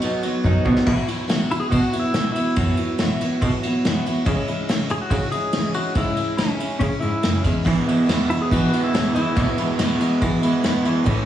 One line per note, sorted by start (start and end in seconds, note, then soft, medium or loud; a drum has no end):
0.00 0.25 B2 medium
0.00 0.22 F#3 medium
0.00 0.24 F#3 medium
0.00 0.85 F#3 medium
0.00 0.57 B3 medium
0.00 0.23 B3 medium
0.00 0.44 D#4 medium
0.00 0.86 D#4 medium
0.00 0.22 D#4 medium
0.00 0.86 F#4 medium
0.00 0.21 F#4 medium
0.00 ride medium
0.22 0.88 F#3 medium
0.22 0.44 B3 soft
0.22 0.45 D#4 medium
0.22 0.44 F#4 medium
0.22 ride medium
0.43 0.52 F#2 loud
0.43 0.65 B2 medium
0.43 0.66 F#3 medium
0.43 0.66 B3 medium
0.43 0.65 D#4 medium
0.43 0.64 F#4 medium
0.43 kick medium
0.55 0.76 A3 medium
0.55 0.78 B3 medium
0.61 0.79 C4 medium
0.61 0.81 D4 medium
0.61 0.86 F#4 medium
0.65 0.73 B2 loud
0.65 0.86 B3 soft
0.65 0.86 D#4 medium
0.65 0.82 E4 medium
0.65 kick medium
0.70 0.84 F4 medium
0.70 0.85 G4 medium
0.75 0.86 A4 medium
0.75 0.88 B4 medium
0.75 snare medium
0.81 0.90 C5 medium
0.81 0.91 D5 medium
0.86 1.08 B2 medium
0.86 0.95 B2 loud
0.86 1.08 E3 medium
0.86 4.23 F#3 medium
0.86 4.23 B3 medium
0.86 1.08 B3 loud
0.86 1.07 E4 loud
0.86 4.23 E4 medium
0.86 4.23 F#4 medium
0.86 1.06 F#4 loud
0.86 kick loud
0.86 crash loud
1.08 1.28 B3 soft
1.08 1.28 E4 medium
1.08 1.28 F#4 medium
1.08 ride medium
1.27 1.50 B2 medium
1.27 1.50 E3 medium
1.27 1.51 B3 medium
1.27 1.50 E4 medium
1.27 1.48 F#4 loud
1.27 snare loud
1.27 ride loud
1.49 1.69 B3 soft
1.49 1.70 E4 soft
1.49 1.62 E4 medium
1.49 1.71 F#4 medium
1.49 ride medium
1.60 1.70 G#4 loud
1.69 1.80 B2 medium
1.69 1.92 E3 medium
1.69 1.93 B3 medium
1.69 1.92 E4 medium
1.69 2.04 F#4 loud
1.69 1.91 F#4 medium
1.69 kick medium
1.69 ride loud
1.92 2.13 B3 soft
1.92 2.13 E4 medium
1.92 2.14 F#4 medium
1.92 ride medium
1.99 2.31 E4 medium
2.13 2.35 B2 medium
2.13 2.36 E3 medium
2.13 2.36 B3 medium
2.13 2.36 E4 medium
2.13 2.35 F#4 medium
2.13 snare loud
2.13 ride loud
2.32 2.94 E4 medium
2.32 2.57 F#4 medium
2.32 ride medium
2.38 2.57 B3 soft
2.38 2.57 E4 soft
2.56 2.65 F#2 loud
2.56 2.78 B2 medium
2.56 2.78 E3 medium
2.56 2.79 B3 medium
2.56 2.78 E4 loud
2.56 2.76 F#4 medium
2.56 kick loud
2.56 ride loud
2.77 3.00 B3 soft
2.77 3.00 E4 medium
2.77 2.99 F#4 medium
2.77 ride medium
2.98 3.21 B2 medium
2.98 3.22 E3 medium
2.98 3.22 B3 loud
2.98 3.22 E4 loud
2.98 snare loud
2.98 ride loud
3.03 3.20 F#4 medium
3.21 3.44 B3 medium
3.21 3.43 E4 medium
3.21 3.42 F#4 medium
3.21 ride medium
3.42 3.50 B2 loud
3.42 3.64 E3 medium
3.42 3.65 B3 medium
3.42 3.65 E4 medium
3.42 kick medium
3.42 ride loud
3.46 3.63 F#4 medium
3.63 3.85 E4 medium
3.63 3.85 F#4 medium
3.63 ride medium
3.67 3.85 B3 soft
3.84 4.06 B2 medium
3.84 4.07 E3 loud
3.84 4.06 B3 medium
3.84 4.07 E4 medium
3.84 4.05 F#4 medium
3.84 snare loud
3.84 ride loud
4.06 4.26 B3 medium
4.06 4.26 E4 medium
4.06 4.27 F#4 medium
4.06 ride medium
4.25 4.47 C#3 medium
4.25 4.35 C#3 loud
4.25 4.47 E3 loud
4.25 7.64 E3 medium
4.25 4.48 G#3 loud
4.25 7.63 G#3 medium
4.25 4.48 C#4 loud
4.25 7.63 C#4 medium
4.25 4.46 E4 loud
4.25 7.63 E4 medium
4.25 kick loud
4.25 ride loud
4.47 4.69 C#4 medium
4.47 4.69 E4 medium
4.47 ride medium
4.52 4.68 G#3 soft
4.68 4.90 C#3 medium
4.68 4.90 E3 medium
4.68 4.91 G#3 medium
4.68 4.90 C#4 loud
4.68 4.88 E4 loud
4.68 snare loud
4.68 ride loud
4.89 5.11 G#3 soft
4.89 5.11 C#4 medium
4.89 5.11 E4 medium
4.89 4.96 G#4 loud
4.89 ride medium
5.01 5.31 F#4 loud
5.10 5.18 C#3 loud
5.10 5.33 E3 medium
5.10 5.33 G#3 medium
5.10 5.33 C#4 medium
5.10 5.32 E4 medium
5.10 kick medium
5.10 ride loud
5.32 5.55 C#4 soft
5.32 5.55 E4 medium
5.32 5.72 G#4 loud
5.32 ride medium
5.36 5.56 G#3 soft
5.52 5.76 C#3 medium
5.52 snare loud
5.52 ride loud
5.57 5.77 E3 medium
5.57 5.76 G#3 medium
5.57 5.76 C#4 medium
5.57 5.74 E4 medium
5.74 5.95 G#3 soft
5.74 5.96 C#4 medium
5.74 5.96 E4 medium
5.74 5.97 F#4 medium
5.74 ride medium
5.95 6.03 G#2 loud
5.95 6.17 C#3 medium
5.95 6.18 E3 medium
5.95 6.18 G#3 medium
5.95 6.18 C#4 medium
5.95 6.16 E4 loud
5.95 6.41 E4 loud
5.95 kick loud
5.95 ride loud
6.16 6.38 G#3 soft
6.16 6.38 C#4 soft
6.16 6.39 E4 medium
6.16 ride medium
6.37 6.60 C#3 medium
6.37 6.60 E3 medium
6.37 6.60 G#3 medium
6.37 6.78 C#4 medium
6.37 6.59 C#4 medium
6.37 6.57 E4 medium
6.37 snare loud
6.37 ride loud
6.58 6.80 G#3 soft
6.58 6.80 C#4 medium
6.58 6.80 E4 medium
6.58 ride medium
6.79 6.89 C#3 loud
6.79 7.01 E3 medium
6.79 7.02 G#3 medium
6.79 7.02 C#4 medium
6.79 7.00 C#4 medium
6.79 6.99 E4 medium
6.79 kick medium
6.79 ride loud
7.00 7.10 G#2 medium
7.00 7.23 G#3 soft
7.00 7.22 C#4 soft
7.00 7.22 E4 medium
7.00 7.41 E4 medium
7.00 ride medium
7.22 7.32 F#2 medium
7.22 7.44 C#3 medium
7.22 7.45 E3 medium
7.22 7.45 G#3 medium
7.22 7.45 C#4 medium
7.22 7.42 E4 medium
7.22 snare loud
7.22 ride loud
7.43 7.53 E2 medium
7.43 7.64 G#3 soft
7.43 7.64 C#4 medium
7.43 7.65 E4 medium
7.43 kick medium
7.43 ride medium
7.63 7.86 E2 medium
7.63 7.86 B2 medium
7.63 7.87 E3 loud
7.63 11.03 E3 medium
7.63 7.75 E3 loud
7.63 7.86 G#3 medium
7.63 11.03 G#3 medium
7.63 7.85 B3 loud
7.63 11.04 B3 medium
7.63 7.85 E4 loud
7.63 11.03 E4 medium
7.63 kick loud
7.63 crash loud
7.86 8.05 E3 soft
7.86 8.06 G#3 medium
7.86 8.07 B3 medium
7.86 8.07 E4 medium
7.86 ride medium
8.06 8.29 E2 medium
8.06 8.29 B2 medium
8.06 8.29 E3 loud
8.06 8.28 G#3 medium
8.06 8.28 B3 medium
8.06 8.26 E4 loud
8.06 snare loud
8.06 ride loud
8.28 8.48 E3 soft
8.28 8.49 G#3 soft
8.28 8.50 B3 medium
8.28 8.50 E4 medium
8.28 8.41 E4 medium
8.28 ride medium
8.42 8.51 G#4 loud
8.49 8.71 E3 medium
8.49 8.60 E3 loud
8.49 8.71 G#3 medium
8.49 8.70 B3 medium
8.49 8.69 E4 medium
8.49 8.81 F#4 loud
8.49 kick medium
8.49 ride loud
8.70 8.91 E3 soft
8.70 8.93 G#3 soft
8.70 8.93 B3 soft
8.70 8.93 E4 medium
8.70 ride medium
8.84 9.13 E4 medium
8.92 9.14 E2 medium
8.92 9.15 B2 medium
8.92 9.15 E3 medium
8.92 9.14 G#3 medium
8.92 9.13 B3 medium
8.92 9.12 E4 medium
8.92 snare loud
8.92 ride loud
9.13 9.35 E3 soft
9.13 9.35 G#3 soft
9.13 9.36 B3 medium
9.13 9.36 E4 medium
9.13 9.75 E4 medium
9.13 ride medium
9.35 9.57 E2 medium
9.35 9.57 B2 medium
9.35 9.45 B2 loud
9.35 9.57 E3 medium
9.35 9.57 G#3 medium
9.35 9.58 B3 loud
9.35 9.58 E4 medium
9.35 kick loud
9.35 ride loud
9.58 9.78 E3 soft
9.58 9.78 G#3 soft
9.58 9.78 B3 soft
9.58 9.79 E4 medium
9.58 ride medium
9.77 9.99 E2 medium
9.77 10.00 B2 medium
9.77 10.00 E3 loud
9.77 10.00 G#3 loud
9.77 9.99 B3 loud
9.77 9.97 E4 loud
9.77 snare loud
9.77 ride loud
9.98 10.20 E3 medium
9.98 10.22 G#3 medium
9.98 10.21 B3 medium
9.98 10.21 E4 medium
9.98 ride medium
10.21 10.43 E3 medium
10.21 10.30 E3 loud
10.21 10.43 G#3 medium
10.21 10.42 B3 medium
10.21 10.41 E4 medium
10.21 kick medium
10.21 ride loud
10.42 10.63 E3 medium
10.42 10.63 G#3 medium
10.42 10.63 B3 medium
10.42 10.64 E4 medium
10.42 ride medium
10.63 10.85 E2 medium
10.63 10.85 B2 medium
10.63 10.86 E3 loud
10.63 10.85 G#3 medium
10.63 10.84 B3 loud
10.63 10.83 E4 loud
10.63 snare loud
10.63 ride loud
10.84 11.04 E3 medium
10.84 11.05 G#3 medium
10.84 11.05 B3 medium
10.84 11.05 E4 medium
10.84 ride medium
11.04 11.25 A2 loud
11.04 11.15 A2 loud
11.04 11.25 E3 loud
11.04 11.25 A3 loud
11.04 11.25 C#4 loud
11.04 11.25 E4 loud
11.04 kick loud
11.04 ride medium
11.08 11.25 E3 medium
11.08 11.25 A3 medium
11.08 11.25 C#4 medium
11.08 11.25 E4 medium
11.08 11.25 E4 loud